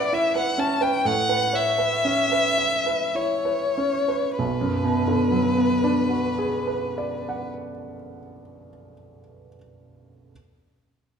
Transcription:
0.00 1.02 A2 soft
0.00 0.58 C#4 soft
0.00 0.35 B4 soft
0.00 1.08 C#5 soft
0.00 0.15 D5 medium
0.00 1.09 E5 soft
0.13 0.50 E4 soft
0.13 0.36 E5 medium
0.35 0.73 B4 soft
0.35 0.61 F#5 medium
0.58 0.96 C#4 soft
0.58 0.83 A5 medium
0.81 1.05 B4 soft
0.81 1.07 G5 medium
1.05 4.36 A2 soft
1.05 1.56 F#5 medium
1.29 1.69 B4 soft
1.53 1.79 C#5 soft
1.53 3.17 E5 medium
1.78 2.20 B4 soft
2.05 2.47 C#4 soft
2.32 2.75 B4 soft
2.58 3.03 E5 soft
2.86 3.33 B4 soft
3.15 3.64 E4 soft
3.15 4.38 C#5 medium
3.45 3.97 B4 soft
3.78 4.29 C#4 soft
4.08 4.40 B4 soft
4.38 7.48 B1 soft
4.38 7.48 B4 medium
4.61 7.71 F#2 soft
4.84 7.93 B2 soft
5.08 8.17 D3 soft
5.31 8.41 F#3 soft
5.57 8.67 B3 soft
5.84 8.93 D4 soft
6.09 9.19 F#4 soft
6.38 9.48 G#4 soft
6.67 9.55 B4 soft
6.98 9.55 D5 soft
7.29 9.55 F#5 soft

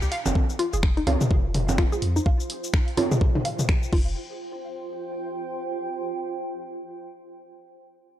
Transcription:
0.02 0.08 C2 medium
0.02 0.05 G4 medium
0.02 cabasa soft
0.12 0.16 F5 loud
0.12 open hi-hat medium
0.26 0.32 F1 loud
0.26 low conga medium
0.26 cabasa medium
0.35 3.91 F4 medium
0.35 kick loud
0.50 cabasa soft
0.59 0.66 F4 medium
0.59 open hi-hat medium
0.73 1.02 F1 loud
0.73 0.77 G#4 medium
0.73 cabasa medium
0.83 finger snap loud
0.83 kick loud
0.97 0.99 D#4 medium
0.97 open hi-hat soft
1.03 1.16 C2 loud
1.03 3.93 C5 medium
1.03 1.11 F5 medium
1.03 open hi-hat medium
1.03 low conga medium
1.21 high tom medium
1.21 cabasa medium
1.31 1.85 F1 loud
1.31 kick loud
1.54 open hi-hat medium
1.54 high tom medium
1.69 low conga medium
1.69 cabasa medium
1.78 1.85 F4 loud
1.78 finger snap medium
1.78 kick loud
1.78 open hi-hat soft
1.92 1.96 G#4 medium
1.92 cabasa soft
2.02 2.19 F2 medium
2.02 open hi-hat medium
2.08 3.93 G5 medium
2.16 2.18 D#4 medium
2.16 cabasa medium
2.26 2.31 F5 medium
2.26 kick loud
2.40 cabasa soft
2.50 open hi-hat loud
2.64 cabasa medium
2.74 finger snap medium
2.74 kick loud
2.88 open hi-hat soft
2.97 3.04 F4 loud
2.97 open hi-hat loud
2.97 low conga medium
3.11 3.15 G#4 medium
3.11 high tom medium
3.11 cabasa medium
3.21 kick loud
3.35 3.37 D#4 medium
3.35 high tom medium
3.45 3.50 F5 medium
3.45 open hi-hat medium
3.59 high tom medium
3.59 cabasa medium
3.69 finger snap loud
3.69 kick loud
3.69 open hi-hat soft
3.83 cabasa soft
3.93 4.15 F1 medium
3.93 4.15 F4 medium
3.93 5.79 F4 medium
3.93 kick loud
3.93 crash medium
4.01 5.79 C5 medium
4.32 6.03 G5 medium

